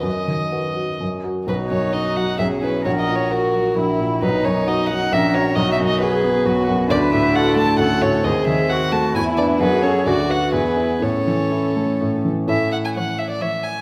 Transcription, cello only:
X:1
M:3/4
L:1/8
Q:1/4=132
K:B
V:1 name="Cello"
z6 | F4 G2 | A2 F2 E2 | D4 A2 |
F2 G2 F2 | [K:A] B2 A2 A2 | G2 F2 E2 | G2 F2 E2 |
C4- C z | z2 E,2 E,2 |]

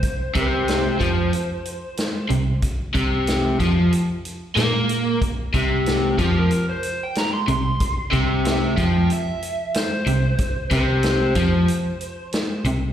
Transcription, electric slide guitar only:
X:1
M:4/4
L:1/16
Q:1/4=93
K:Cmix
V:1 name="Electric slide guitar"
c2 c12 z2 | z16 | z6 G B2 c2 g b c' c'2- | c'2 z2 e2 g2 e4 c4- |
c2 c12 z2 |]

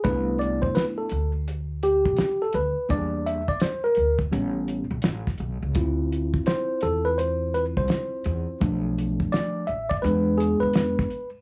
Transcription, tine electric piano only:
X:1
M:4/4
L:1/16
Q:"Swing 16ths" 1/4=84
K:C
V:1 name="Tine electric piano"
B2 d c B A2 z3 G3 A B2 | d2 e d c _B2 z8 z | z4 c2 A B c2 B c4- c- | c z3 d2 e d B2 ^G B4 z |]
V:2 name="Tine electric piano"
[A,B,DE]6 z8 z2 | [G,_B,D]2 z6 [G,=B,^C]2 z6 | [CEF]16 | [F,A,D]6 z2 [^G,B,D]6 z2 |]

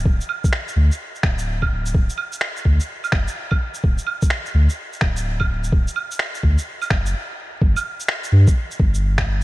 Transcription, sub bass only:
X:1
M:4/4
L:1/16
Q:"Swing 16ths" 1/4=127
K:Dphr
V:1 name="Sub bass" clef=bass
D,,,2 z4 D,,2 z2 D,,,4 D,,,2 | D,,,2 z4 D,,2 z2 ^F,,,2 z4 | D,,,2 z4 D,,2 z2 D,,,4 D,,,2 | D,,,2 z4 D,,2 z2 ^F,,,2 z4 |
G,,, z4 z G,, z3 G,,,4 G,,,2 |]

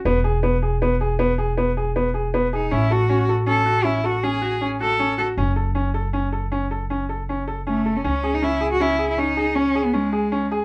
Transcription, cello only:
X:1
M:7/4
L:1/16
Q:1/4=158
K:C#m
V:1 name="Cello"
z24 z2 D2 | E2 F4 z2 A4 E2 F2 G4 z2 A4 A2 | z24 A,3 C | C3 D E3 F E3 E D4 C3 B, G,6 z2 |]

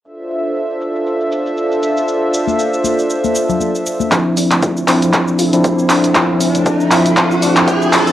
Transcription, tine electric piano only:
X:1
M:4/4
L:1/16
Q:"Swing 16ths" 1/4=118
K:Dm
V:1 name="Tine electric piano"
z16 | z16 | [F,CDE]6 [F,CDE]4- [F,CDE] [F,CDE]4- [F,CDE] | [F,CDE]6 [F,CDE]4- [F,CDE] [F,CDE]4- [F,CDE] |]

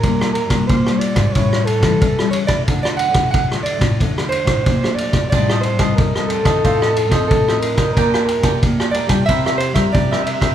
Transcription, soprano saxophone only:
X:1
M:4/4
L:1/16
Q:1/4=91
K:Gm
V:1 name="Soprano saxophone"
B2 B2 c2 d2 ^c2 A4 c d- | d d ^f2 f2 d2 z2 c4 d2 | d2 c2 B2 A6 A2 B2 | B2 B2 z2 d2 =e2 c2 d2 e2 |]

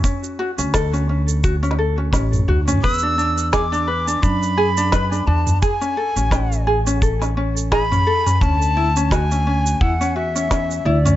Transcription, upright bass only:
X:1
M:4/4
L:1/16
Q:"Swing 16ths" 1/4=86
K:A
V:1 name="Upright bass" clef=bass
z3 D,,8- D,, A,,, z D,, z | E,,6- E,, z F,,4- F,, z E,, z | z3 A,,,8- A,,,2 z3 | D,,6- D,, z E,,4- E,, z D,, z |]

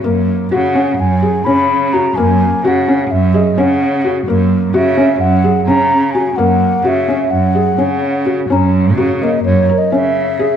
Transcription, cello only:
X:1
M:9/8
L:1/8
Q:3/8=85
K:F#mix
V:1 name="Cello" clef=bass
F,,2 C,2 F,,2 C,3 | F,,2 C,2 F,,2 C,3 | F,,2 C,2 F,,2 C,3 | F,,2 C,2 F,,2 C,3 |
F,,2 C,2 F,, z C,3 |]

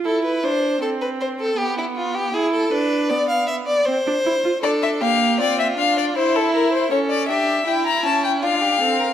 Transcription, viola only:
X:1
M:3/4
L:1/16
Q:1/4=79
K:Dm
V:1 name="Viola"
E2 D2 C4 =B,4 | E2 D2 =B,4 C D E F | D2 B,2 C2 D2 E4 | ^C2 D2 E2 C2 D2 =C2 |]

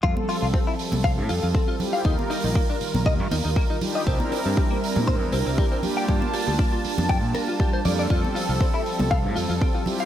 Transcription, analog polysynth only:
X:1
M:4/4
L:1/8
Q:"Swing 16ths" 1/4=119
K:F
V:1 name="Analog polysynth"
[F,G,CA]6- [F,G,CA] [G,CEFG] | [_E,G,FB]6- [E,G,FB] [G,D_EFG] | [G,CDEB]6- [G,CDEB] [G,B,DFG] | [G,B,DFa]6- [G,B,DFa] [G,B,DFA] |
[F,G,CA]6- [F,G,CA] [G,CEFG] |]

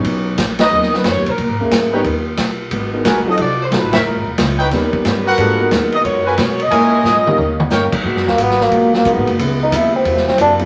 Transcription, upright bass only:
X:1
M:4/4
L:1/8
Q:"Swing" 1/4=180
K:G#m
V:1 name="Upright bass" clef=bass
B,,,2 A,,,2 D,,2 (3F,, D,, B,,, | (3A,, G,, E,, G,,2 D,,2 B,,,2 | G,,,2 A,,, z =C,,2 (3B,,, =A,,, =F,,, | (3A,,, G,,, E,,, C,,2 D,,2 =G,,2 |
G,,2 D,,2 F,,2 B,,2 | A,,2 G,,2 D,,2 =G,, z | (3G,, F,, D,, G,,,2 A,,,2 (3B,,, G,,, F,,, | C,,2 D,,2 E,,2 F,,2 |]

